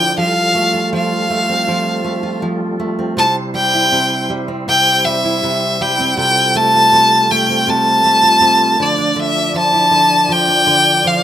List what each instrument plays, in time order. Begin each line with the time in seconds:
Already playing: steel-string acoustic guitar D3 F3 D4 E4, tonewheel organ F3 E4 D5, violin G5
0.18 steel-string acoustic guitar F3, tonewheel organ G3 F4 A4, violin F5
0.55 steel-string acoustic guitar A3
0.74 steel-string acoustic guitar F4
0.93 steel-string acoustic guitar F3, violin F5
1.30 steel-string acoustic guitar A3
1.49 steel-string acoustic guitar C4
1.68 steel-string acoustic guitar F3
2.04 steel-string acoustic guitar A3
2.23 steel-string acoustic guitar F4
2.42 steel-string acoustic guitar F3
2.80 steel-string acoustic guitar A3
2.99 steel-string acoustic guitar C4
3.17 steel-string acoustic guitar C3, tonewheel organ E4 C5, violin A5
3.54 steel-string acoustic guitar G3, violin G5
3.74 steel-string acoustic guitar E4
3.92 steel-string acoustic guitar C3
4.30 steel-string acoustic guitar G3
4.48 steel-string acoustic guitar C4
4.68 steel-string acoustic guitar C3, violin G5
5.04 steel-string acoustic guitar G3, violin E5
5.24 steel-string acoustic guitar E4
5.44 steel-string acoustic guitar C3
5.81 steel-string acoustic guitar G3, violin G5
6.00 steel-string acoustic guitar C4
6.17 steel-string acoustic guitar C3, tonewheel organ C3 F4 A4, violin G5
6.55 steel-string acoustic guitar A3, violin A5
6.74 steel-string acoustic guitar F4
6.93 steel-string acoustic guitar C3
7.31 steel-string acoustic guitar A3, violin G5
7.49 steel-string acoustic guitar C4
7.68 steel-string acoustic guitar C3, violin A5
8.04 steel-string acoustic guitar A3
8.23 steel-string acoustic guitar F4
8.41 steel-string acoustic guitar C3
8.80 steel-string acoustic guitar D3, tonewheel organ F3 D4 D5, violin D5
8.98 steel-string acoustic guitar D4
9.16 steel-string acoustic guitar D3, violin E5
9.54 steel-string acoustic guitar F3
9.58 violin A5
9.73 steel-string acoustic guitar E4
9.91 steel-string acoustic guitar D3
10.29 steel-string acoustic guitar F3, violin G5
10.48 steel-string acoustic guitar D4
10.67 steel-string acoustic guitar D3
11.05 steel-string acoustic guitar F3, violin F5